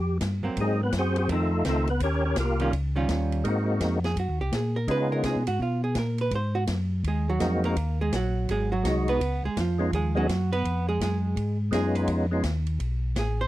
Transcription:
Already playing: tonewheel organ F2 G4
0.21 tonewheel organ G2, kick, snare, hi-hat pedal, ride
0.43 tonewheel organ G2, hollow-body jazz guitar F#3 A#3 C4
0.56 tonewheel organ G#2 G#4, kick, ride
0.61 tonewheel organ G#3 C4 D#4
0.83 tonewheel organ B3 B4
0.92 tonewheel organ F#2, kick, snare, hi-hat pedal, ride
0.98 tonewheel organ C4 F#4 G#4 C5
1.16 tonewheel organ C4 F#4 G#4 C5, ride
1.28 tonewheel organ F2 A4, hollow-body jazz guitar D#3 A3 C4, kick, ride
1.33 tonewheel organ A3 D#4 F4
1.65 tonewheel organ C#2 F4 A4, hollow-body jazz guitar D#3 A3 C4, kick, snare, hi-hat pedal, ride
1.69 tonewheel organ A3 D#4
1.87 tonewheel organ B3 B4, ride
2.00 tonewheel organ D#2 C#4 G4 A#4 C#5, kick, ride
2.25 tonewheel organ C#4 G4 A#4 C#5
2.36 tonewheel organ C2 A#3 A#4, kick, snare, hi-hat pedal, ride
2.40 tonewheel organ F4 G4
2.60 hollow-body jazz guitar D#3 G3 C#4 F4, ride
2.73 tonewheel organ C#2, kick, ride
2.96 hollow-body jazz guitar D#3 G3 C#4 F4
3.09 tonewheel organ D#2, kick, snare, hi-hat pedal, ride
3.32 ride
3.44 tonewheel organ G#2 G#3 A#3 C4 D#4 F#4, kick, ride
3.80 tonewheel organ F2, kick, snare, hi-hat pedal, ride
4.04 hollow-body jazz guitar G#4, snare, ride
4.16 tonewheel organ F#2, hollow-body jazz guitar F#4, kick, ride
4.29 tonewheel organ D#2
4.41 tonewheel organ C2, hollow-body jazz guitar G4
4.52 tonewheel organ A#2, hollow-body jazz guitar G#4, kick, snare, hi-hat pedal, ride
4.76 hollow-body jazz guitar A#4
4.88 tonewheel organ C#3 G#3 B3 C#4 D#4 F4, hollow-body jazz guitar B4, kick, ride
5.12 hollow-body jazz guitar A#4
5.23 tonewheel organ C3, hollow-body jazz guitar G#4, kick, snare, hi-hat pedal, ride
5.36 tonewheel organ B2
5.47 tonewheel organ G#2, hollow-body jazz guitar F#4, ride
5.59 tonewheel organ B2, hollow-body jazz guitar F4, kick
5.84 hollow-body jazz guitar G#4
5.95 tonewheel organ A#2, hollow-body jazz guitar A#4, kick, snare, hi-hat pedal, ride
6.18 hollow-body jazz guitar B4, ride
6.31 tonewheel organ G#2, kick, ride
6.35 hollow-body jazz guitar C5
6.55 hollow-body jazz guitar F#4
6.67 tonewheel organ F#2, kick, snare, hi-hat pedal, ride
7.04 tonewheel organ D#2, hollow-body jazz guitar G#3 G#4, kick, ride
7.29 hollow-body jazz guitar F#3 F#4
7.39 tonewheel organ F2 G#3 A#3 C4 D#4 F#4, kick, snare, hi-hat pedal, ride
7.64 hollow-body jazz guitar A#3 A#4, ride
7.76 tonewheel organ D#2, kick, ride
8.01 hollow-body jazz guitar G#3 G#4
8.12 tonewheel organ A#1, hollow-body jazz guitar F#3 F#4, kick, snare, hi-hat pedal, ride
8.48 tonewheel organ G#1, hollow-body jazz guitar G#3 G#4, kick, ride
8.72 hollow-body jazz guitar F#3 F#4
8.83 tonewheel organ C2 G#3 D#4 F#4, kick, snare, hi-hat pedal, ride
9.08 hollow-body jazz guitar B3 B4, ride
9.21 tonewheel organ C#2, kick, ride
9.43 tonewheel organ C#2, hollow-body jazz guitar G#3 G#4
9.57 tonewheel organ F2, hollow-body jazz guitar F3 F4, kick, snare, hi-hat pedal, ride
9.79 tonewheel organ G#3 B3 C#4 D#4 F4
9.93 tonewheel organ D#2, hollow-body jazz guitar G#3 G#4, kick, ride
10.15 hollow-body jazz guitar F#3 F#4, tonewheel organ G#3 B3 C#4 D#4 G#4
10.28 tonewheel organ F#2, kick, snare, hi-hat pedal, ride
10.53 hollow-body jazz guitar B3 B4, ride
10.64 tonewheel organ F2, kick, ride
10.89 hollow-body jazz guitar G#3 G#4
11.01 tonewheel organ F#2, hollow-body jazz guitar G#3 G#4, kick, snare, hi-hat pedal, ride
11.36 tonewheel organ G#2, kick, ride
11.71 tonewheel organ F#2 G#3 B3 C#4 D#4 F4, hollow-body jazz guitar G#4, kick, snare, hi-hat pedal, ride
11.95 hollow-body jazz guitar B4, ride
12.08 tonewheel organ F2, kick, ride
12.31 tonewheel organ G#3 B3 C#4 D#4 F4
12.43 tonewheel organ D#2, kick, snare, hi-hat pedal, ride
12.67 ride
12.80 tonewheel organ B1, kick, ride
13.16 tonewheel organ A1, hollow-body jazz guitar G#4, kick, snare, hi-hat pedal, ride
13.41 hollow-body jazz guitar C5

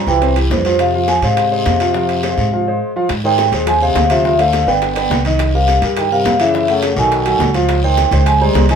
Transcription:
Already playing: grand piano F3 F4 G4
0.07 upright bass C2, trombone E3, vibraphone G5, high bongo, short guiro
0.22 grand piano C3 C4 C5, high bongo, high timbale, long guiro
0.36 grand piano E3 E4 G4, high bongo, high timbale
0.50 upright bass F2, trombone G2, vibraphone C5, high bongo, low bongo, low timbale, short guiro
0.65 grand piano F3 F4 F5, high timbale, short guiro
0.79 trombone C3, vibraphone F5, high bongo, high timbale, long guiro
0.94 grand piano F3 F4 F5
1.08 trombone F3, vibraphone G#5, high bongo, high timbale, low timbale, short guiro
1.22 upright bass G#2, trombone C3, grand piano G#3 G#4 C5, vibraphone F5, high bongo, high timbale, short guiro
1.37 high bongo, high timbale, long guiro
1.51 grand piano G#3 G#4 C5, high bongo
1.66 upright bass F2, high bongo, low bongo, high timbale, low timbale, short guiro
1.80 grand piano F3 F4 F5, high bongo, high timbale, short guiro
1.94 grand piano F3 F4 F5, high bongo, long guiro
2.09 high bongo, high timbale
2.23 grand piano G#3 G#4 C5, high bongo, high timbale, low timbale, short guiro
2.37 upright bass G#2, high bongo, short guiro
2.53 grand piano F3 F4 F5
2.67 grand piano G#3 G#4 C5
2.96 grand piano F3 F4 F5
3.09 upright bass G#2, high bongo, high timbale, long guiro
3.24 trombone D#3, grand piano G#3 G#4 C5, vibraphone G5
3.38 high bongo, high timbale, low timbale, short guiro
3.52 upright bass D#2, grand piano G#3 G#4 C5, high bongo, high timbale, short guiro
3.66 trombone F3, vibraphone G#5, high bongo, high timbale, long guiro
3.81 trombone C3, grand piano G#3 G#4 C5, vibraphone F5, high bongo
3.95 upright bass D2, high bongo, low bongo, high timbale, low timbale, short guiro
4.09 trombone C3, grand piano F3 F4 F5, vibraphone E5, high bongo, high timbale, short guiro
4.25 grand piano F3 F4 F5, high bongo, long guiro
4.38 trombone D3, grand piano A3 A4 C5, vibraphone F5, high bongo, high timbale
4.53 high bongo, high timbale, low timbale, short guiro
4.67 upright bass G1, trombone D3, grand piano B3 B4 D5, vibraphone G5, high bongo, short guiro
4.82 high bongo, high timbale, long guiro
4.96 grand piano B3 B4 D5, high bongo, high timbale
5.10 upright bass C2, high bongo, low bongo, low timbale, short guiro
5.25 grand piano D#3 D#4 D#5, high timbale, short guiro
5.39 high bongo, high timbale, long guiro
5.54 trombone C3, grand piano G3 G4 A#4, vibraphone F5
5.68 high bongo, high timbale, low timbale, short guiro
5.82 upright bass G2, grand piano G3 G4 A#4, high bongo, high timbale, short guiro
5.97 trombone D#3, vibraphone G5, high bongo, high timbale, long guiro
6.12 trombone C3, grand piano G3 G4 A#4, vibraphone F5, high bongo
6.25 upright bass F#2, high bongo, low bongo, high timbale, low timbale, short guiro
6.40 trombone C#3, grand piano E3 E4 E5, vibraphone E5, high bongo, high timbale, short guiro
6.54 grand piano E3 E4 E5, high bongo, long guiro
6.68 trombone C#3, grand piano A3 A4 C#5, vibraphone F#5, high bongo, high timbale
6.82 high bongo, high timbale, low timbale, short guiro
6.96 upright bass B1, trombone D#3, grand piano F#3 F#4 A4, vibraphone G#5, high bongo, short guiro
7.11 high bongo, high timbale, long guiro
7.26 grand piano F#3 F#4 A4, high bongo, high timbale
7.39 upright bass C#2, high bongo, low bongo, low timbale, short guiro
7.54 grand piano F3 F4 F5, high timbale, short guiro
7.69 high bongo, high timbale, long guiro
7.83 trombone D#3, grand piano G#3 G#4 C5, vibraphone G5
7.97 high bongo, high timbale, low timbale, short guiro
8.11 upright bass C#2, grand piano G#3 G#4 C5, high bongo, high timbale, short guiro
8.26 trombone F3, vibraphone G#5, high bongo, high timbale, long guiro
8.41 trombone G3, grand piano G#3 G#4 C5, vibraphone A#5, high bongo
8.54 upright bass C2, high bongo, low bongo, high timbale, low timbale, short guiro
8.69 grand piano D#3 D#4 D#5, trombone F3, vibraphone G#5, high bongo, high timbale, short guiro

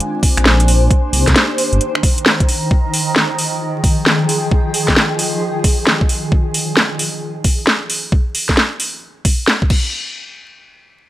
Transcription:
Already playing: analog synth pad G#3 C4 D4 F4, ambient pad D4 C5 G#5
0.00 closed hi-hat
0.23 kick, open hi-hat
0.37 detuned saw bass A#1, finger snap, closed hi-hat
0.45 snare
0.60 closed hi-hat
0.68 open hi-hat
0.91 ambient pad D#3, analog synth pad A#3 D4 D#4 G4, kick, closed hi-hat
1.13 detuned saw bass C2, open hi-hat
1.28 detuned saw bass C2, kick, snare, closed hi-hat
1.36 snare, closed hi-hat
1.43 ambient pad A#5
1.58 open hi-hat
1.73 detuned saw bass G1, closed hi-hat
1.81 closed hi-hat
1.95 finger snap
2.03 kick, open hi-hat
2.18 closed hi-hat
2.26 snare
2.40 kick, closed hi-hat
2.49 open hi-hat
2.71 ambient pad F3, kick
2.94 open hi-hat
2.98 ambient pad G#4
3.15 ambient pad G5, snare
3.39 open hi-hat
3.84 kick, open hi-hat
4.06 snare
4.29 open hi-hat
4.51 kick
4.74 open hi-hat
4.88 kick, snare
4.97 snare
5.19 open hi-hat
5.64 kick, open hi-hat
5.87 snare
6.01 kick
6.09 open hi-hat
6.32 kick
6.54 open hi-hat
6.77 snare
6.99 open hi-hat
7.44 kick, open hi-hat
7.67 snare
7.90 open hi-hat
8.12 kick
8.35 open hi-hat
8.49 kick, snare
8.57 snare
8.80 open hi-hat
9.25 kick, open hi-hat
9.48 snare
9.62 kick
9.70 kick, crash

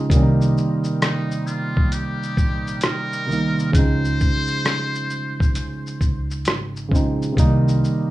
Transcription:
Already playing: tine electric piano C#3 F3 G#3 C4 D#4
0.09 upright bass C2, tine electric piano C3 D#3 G3, accordion C3 D#3 G3 A#3 D#4, kick, closed hi-hat, shaker
0.14 tine electric piano A#3 C#4
0.23 tine electric piano D#4
0.41 shaker
0.58 shaker
0.84 shaker
1.02 muted trumpet D#4, cross-stick, closed hi-hat, shaker
1.31 shaker
1.47 muted trumpet F4, shaker
1.77 kick
1.92 muted trumpet G4, closed hi-hat, shaker
2.23 shaker
2.37 upright bass A#1, kick, shaker
2.67 shaker
2.81 muted trumpet A#4, cross-stick, closed hi-hat, shaker
3.13 shaker
3.26 upright bass C2, tine electric piano C3 D#3 G3
3.31 tine electric piano A#3 D#4, shaker
3.59 shaker
3.72 upright bass C#2, tine electric piano C#3 F3 G#3, muted trumpet C5, kick, closed hi-hat, shaker
3.77 tine electric piano C4 D#4
4.05 shaker
4.20 kick, shaker
4.47 shaker
4.65 cross-stick, closed hi-hat, shaker
4.95 shaker
5.10 shaker
5.40 kick, shaker
5.55 upright bass C#3, closed hi-hat, shaker
5.87 shaker
6.01 upright bass C#2, kick, shaker
6.31 shaker
6.45 upright bass G#1, cross-stick, closed hi-hat, shaker
6.76 shaker
6.89 upright bass A#1, tine electric piano C#3 F3 G#3, kick
6.94 tine electric piano C4 D#4, shaker
7.22 shaker
7.32 tine electric piano C3 D#3 G3
7.37 upright bass C2, accordion C3 D#3 G3 A#3 D#4, tine electric piano A#3 D#4, kick, closed hi-hat, shaker
7.68 shaker
7.84 shaker

